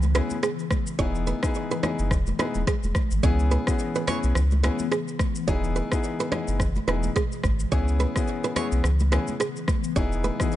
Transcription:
Already playing: sub bass C#2, ambient pad C#3 E3 B3
0.02 high conga, shaker
0.15 grand piano B3 C#4 E4 G#4, nylon-string guitar B4, cross-stick, high conga, shaker
0.30 high conga, shaker
0.43 nylon-string guitar G#4, cross-stick, shaker
0.59 shaker
0.71 kick, cross-stick, high conga, shaker
0.87 shaker
0.99 sub bass E1, ambient pad B2 G#3, grand piano B3 D#4 E4 G#4, nylon-string guitar C#5, kick, low conga, shaker
1.15 shaker
1.27 nylon-string guitar B4, high conga, shaker
1.43 grand piano B3 D#4 E4 G#4, kick, cross-stick, shaker
1.55 shaker
1.71 nylon-string guitar B4, shaker
1.83 grand piano B3 D#4 E4 G#4, nylon-string guitar C#5, cross-stick, high conga, low conga, shaker
1.99 sub bass F#1, shaker
2.11 sub bass E1, kick, cross-stick, low conga, shaker
2.27 high conga, shaker
2.39 grand piano B3 D#4 E4 G#4, nylon-string guitar B4, cross-stick, high conga, shaker
2.55 sub bass D#1, high conga, shaker
2.67 nylon-string guitar G#4, kick, cross-stick, shaker
2.83 sub bass E1, high conga, shaker
2.95 kick, cross-stick, high conga, shaker
3.11 sub bass G#1, shaker
3.23 sub bass C#2, ambient pad C#3 E3 B3, grand piano B3 C#4 E4 G#4, nylon-string guitar C#5, kick, low conga, shaker
3.39 shaker
3.51 nylon-string guitar B4, high conga, shaker
3.67 grand piano B3 C#4 E4 G#4, kick, cross-stick, shaker
3.79 shaker
3.95 nylon-string guitar B4, shaker
4.07 grand piano B3 C#4 E4 G#4, nylon-string guitar C#5, cross-stick, high conga, low conga, shaker
4.23 sub bass B1, shaker
4.35 sub bass C#2, cross-stick, low conga, shaker
4.51 high conga, shaker
4.63 grand piano B3 C#4 E4 G#4, nylon-string guitar B4, cross-stick, high conga, shaker
4.79 high conga, shaker
4.92 nylon-string guitar G#4, cross-stick, shaker
5.08 shaker
5.19 kick, cross-stick, high conga, shaker
5.35 shaker
5.47 sub bass E1, ambient pad B2 G#3, grand piano B3 D#4 E4 G#4, nylon-string guitar C#5, kick, low conga, shaker
5.64 shaker
5.76 nylon-string guitar B4, high conga, shaker
5.91 grand piano B3 D#4 E4 G#4, kick, cross-stick, shaker
6.03 shaker
6.20 nylon-string guitar B4, shaker
6.31 grand piano B3 D#4 E4 G#4, nylon-string guitar C#5, cross-stick, high conga, low conga, shaker
6.48 sub bass F#1, shaker
6.60 kick, cross-stick, low conga, shaker
6.76 high conga, shaker
6.87 sub bass E1, grand piano B3 D#4 E4 G#4, nylon-string guitar B4, cross-stick, high conga, shaker
7.03 high conga, shaker
7.16 nylon-string guitar G#4, kick, cross-stick, shaker
7.32 shaker
7.44 sub bass G#1, kick, cross-stick, high conga, shaker
7.60 shaker
7.71 sub bass C#2, ambient pad C#3 E3 B3, grand piano B3 C#4 E4 G#4, nylon-string guitar C#5, kick, low conga, shaker
7.88 shaker
8.00 nylon-string guitar B4, high conga, shaker
8.16 grand piano B3 C#4 E4 G#4, kick, cross-stick, shaker
8.28 shaker
8.44 nylon-string guitar B4, shaker
8.56 grand piano B3 C#4 E4 G#4, nylon-string guitar C#5, cross-stick, high conga, low conga, shaker
8.72 sub bass B1, shaker
8.84 sub bass C#2, cross-stick, low conga, shaker
9.00 high conga, shaker
9.12 grand piano B3 C#4 E4 G#4, nylon-string guitar B4, cross-stick, high conga, shaker
9.28 high conga, shaker
9.40 nylon-string guitar G#4, cross-stick, shaker
9.56 shaker
9.68 kick, cross-stick, high conga, shaker
9.84 shaker
9.96 sub bass E1, ambient pad B2 G#3, grand piano B3 D#4 E4 G#4, nylon-string guitar C#5, kick, low conga, shaker
10.12 shaker
10.24 nylon-string guitar B4, high conga, shaker
10.40 grand piano B3 D#4 E4 G#4, kick, cross-stick, shaker
10.52 shaker

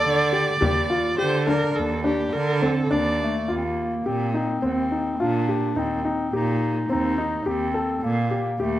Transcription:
Already playing: grand piano A4, clarinet D5, viola D5
0.05 cello D3
0.33 grand piano G4, frame drum
0.61 cello D#2, grand piano G4, frame drum
0.90 grand piano F4
1.18 cello D3, grand piano G4, viola C5
1.47 grand piano D4, viola A#4, frame drum
1.75 cello D#2, viola A4, frame drum
2.04 grand piano D4, viola G4
2.33 cello D3, viola A#4, frame drum
2.62 grand piano C4, viola A4, frame drum
2.90 cello D#2, grand piano D4, viola D5
3.23 clarinet A3
3.48 cello D#2, clarinet A#3, grand piano F4
3.57 clarinet C4
3.65 clarinet A#3
4.05 cello A#2, clarinet C4, grand piano G4
4.34 clarinet C4, grand piano D#4
4.62 cello D#2, grand piano C4, clarinet C4
4.92 grand piano D#4
5.19 cello A#2, clarinet D4, grand piano F4
5.49 grand piano G4
5.76 cello D#2, clarinet C4, grand piano D#4
6.05 grand piano D#4
6.33 cello A#2, clarinet D#4, grand piano G4
6.89 cello D#2, grand piano C4, clarinet D#4
7.18 grand piano D#4
7.46 cello D#2, clarinet C4, grand piano G4
7.74 grand piano A4
8.02 cello A#2, clarinet A#3
8.31 grand piano G4
8.59 cello D#2, clarinet A3, grand piano G4

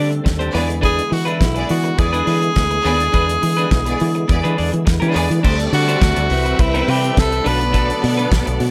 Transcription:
Already playing: fingered electric bass D3, tonewheel organ D3 G3 A3 C4 A4, clean electric guitar D4 G4 D5, tenor saxophone D4
0.11 muted clean electric guitar stroke, closed hi-hat
0.24 fingered electric bass D#2, muted clean electric guitar stroke, kick, snare, closed hi-hat
0.39 clean electric guitar D4 G4 C5, closed hi-hat
0.53 fingered electric bass E2, tonewheel organ E3 G#3 B3 E4, string section B3 G#4 D5, clean electric guitar D4 G#4 B4, open hi-hat
0.68 muted clean electric guitar stroke, closed hi-hat
0.81 clean electric guitar D4 G#4 B4, tenor saxophone G#4, kick, closed hi-hat
0.97 muted clean electric guitar stroke, closed hi-hat
1.10 fingered electric bass E3, tenor saxophone F#4, muted clean electric guitar stroke, open hi-hat
1.25 clean electric guitar D4 G#4 B4, tenor saxophone E4, closed hi-hat
1.40 fingered electric bass B1, muted clean electric guitar stroke, kick, snare, closed hi-hat
1.55 string section B3 G#4 D5, muted clean electric guitar stroke, closed hi-hat
1.69 fingered electric bass E3, tenor saxophone F#4, open hi-hat
1.84 muted clean electric guitar stroke, closed hi-hat
1.98 fingered electric bass E2, string section B3 G#4 D5, tenor saxophone G#4, muted clean electric guitar stroke, kick, closed hi-hat
2.13 clean electric guitar D4 G#4 B4, closed hi-hat
2.26 fingered electric bass E3, clean electric guitar D4 G#4 B4, open hi-hat
2.42 muted clean electric guitar stroke, closed hi-hat
2.56 fingered electric bass D2, kick, snare, closed hi-hat
2.71 muted clean electric guitar stroke, closed hi-hat
2.84 fingered electric bass D#2, string section B3 G#4 D5, clean electric guitar D4 G#4 B4, open hi-hat
2.99 muted clean electric guitar stroke, closed hi-hat
3.12 fingered electric bass E2, clean electric guitar D4 G#4 B4, kick, closed hi-hat
3.28 muted clean electric guitar stroke, closed hi-hat
3.42 fingered electric bass E3, muted clean electric guitar stroke, open hi-hat
3.57 clean electric guitar D4 G#4 B4, closed hi-hat
3.71 fingered electric bass B1, muted clean electric guitar stroke, kick, snare, closed hi-hat
3.86 string section B3 G#4 D5, muted clean electric guitar stroke, closed hi-hat
4.00 fingered electric bass E3, open hi-hat
4.15 muted clean electric guitar stroke, closed hi-hat
4.28 fingered electric bass E2, string section B3 G#4 D5, muted clean electric guitar stroke, kick, closed hi-hat
4.44 fingered electric bass E3, clean electric guitar D4 G#4 B4, closed hi-hat
4.56 fingered electric bass E2, clean electric guitar D4 G#4 D5, open hi-hat
4.72 fingered electric bass E3, muted clean electric guitar stroke, closed hi-hat
4.85 fingered electric bass E2, muted clean electric guitar stroke, kick, snare, closed hi-hat
5.00 fingered electric bass E3, clean electric guitar D4 G#4 B4, closed hi-hat
5.14 fingered electric bass E2, string section B3 G#4 D5, clean electric guitar D4 G#4 B4, open hi-hat
5.30 fingered electric bass E3, muted clean electric guitar stroke, closed hi-hat
5.43 fingered electric bass D2, tonewheel organ D3 G3 A3 C4 A4, string section G3 A3 D5, clean electric guitar D4 G4 C5, kick, crash
5.59 muted clean electric guitar stroke, closed hi-hat
5.73 fingered electric bass D3, tenor saxophone F#4, muted clean electric guitar stroke, open hi-hat
5.88 clean electric guitar D4 G4 C5, closed hi-hat
6.02 fingered electric bass D2, muted clean electric guitar stroke, kick, snare, closed hi-hat
6.16 fingered electric bass D2, muted clean electric guitar stroke, closed hi-hat
6.30 fingered electric bass C2, tonewheel organ E3 G3 B4, string section C4 B4 E5, open hi-hat
6.45 muted clean electric guitar stroke, closed hi-hat
6.59 fingered electric bass C2, tenor saxophone E4, muted clean electric guitar stroke, kick, closed hi-hat
6.74 clean electric guitar C4 E4 B4, closed hi-hat
6.87 fingered electric bass C3, clean electric guitar C4 E4 B4, tenor saxophone G4, open hi-hat
7.03 muted clean electric guitar stroke, closed hi-hat
7.17 fingered electric bass C2, tenor saxophone A4, kick, snare, closed hi-hat
7.31 muted clean electric guitar stroke, closed hi-hat
7.44 fingered electric bass B1, tonewheel organ D3 F#3 A3 B3 F#4, string section B3 A4 D5, clean electric guitar D4 A4 B4, tenor saxophone B4, open hi-hat
7.60 muted clean electric guitar stroke, closed hi-hat
7.73 clean electric guitar D4 A4 B4, kick, closed hi-hat
7.88 muted clean electric guitar stroke, closed hi-hat
8.02 fingered electric bass B2, muted clean electric guitar stroke, open hi-hat
8.17 clean electric guitar D4 A4 B4, closed hi-hat
8.31 fingered electric bass B1, muted clean electric guitar stroke, kick, snare, closed hi-hat
8.46 fingered electric bass B1, muted clean electric guitar stroke, closed hi-hat
8.60 fingered electric bass B2, open hi-hat

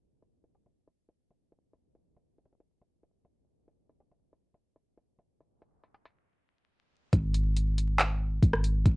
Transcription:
0.22 closed hi-hat
0.44 closed hi-hat
0.55 closed hi-hat
0.66 closed hi-hat
0.87 closed hi-hat
1.09 closed hi-hat
1.31 closed hi-hat
1.52 closed hi-hat
1.73 closed hi-hat
1.95 closed hi-hat
2.16 closed hi-hat
2.38 closed hi-hat
2.45 closed hi-hat
2.53 closed hi-hat
2.60 closed hi-hat
2.81 closed hi-hat
3.03 closed hi-hat
3.25 closed hi-hat
3.68 closed hi-hat
3.89 closed hi-hat
4.00 closed hi-hat
4.11 closed hi-hat
4.33 closed hi-hat
4.54 closed hi-hat
4.76 closed hi-hat
4.97 closed hi-hat
5.19 closed hi-hat
5.40 closed hi-hat
5.62 closed hi-hat
5.84 closed hi-hat
5.94 closed hi-hat
6.05 closed hi-hat
7.13 808-style bass G#1, kick, closed hi-hat
7.34 closed hi-hat
7.57 closed hi-hat
7.78 closed hi-hat
7.99 clap, closed hi-hat
8.43 808-style bass G#1, kick, closed hi-hat
8.53 cross-stick
8.64 closed hi-hat
8.86 808-style bass G#1, kick, closed hi-hat

